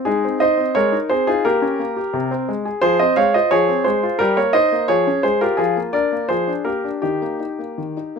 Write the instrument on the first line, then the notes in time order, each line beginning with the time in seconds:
grand piano
0.05 G#3 D#4 G#4
0.25 C4
0.40 D#4 C5 D#5
0.57 C4
0.75 G#3 A#4 C#5
0.92 D#4
1.10 C4 G#4 C5
1.27 D#4 F4 G#4
1.45 A#3 G4 A#4
1.62 C#4
1.79 A#3
1.96 G4
2.14 C3
2.31 C4
2.48 G#3
2.65 G#4
2.82 F3 G#4 C5
2.99 C4 C5 D#5
3.16 G#3 C#5 F5
3.34 F4 C5 D#5
3.51 F3 G#4 C#5
3.69 C4
3.84 G#3 G#4 C5
4.03 F4
4.19 G3 G4 A#4
4.37 A#3 A#4 C#5
4.53 D#4 C5 D#5
4.72 A#3
4.88 F3 G#4 C#5
5.07 C#4
5.23 G#3 G#4 C5
5.41 F4 G4 A#4
5.57 F3 F4 G#4
5.77 A#3
5.93 D4 A#4 D5
6.12 A#3
6.29 F3 G#4 C5
6.47 D4
6.65 A#3 G4 A#4
6.84 D4
7.02 D#3 D#4 G4
7.22 A#3
7.40 D#4
7.59 A#3
7.78 D#3
7.97 D#4
8.16 A#3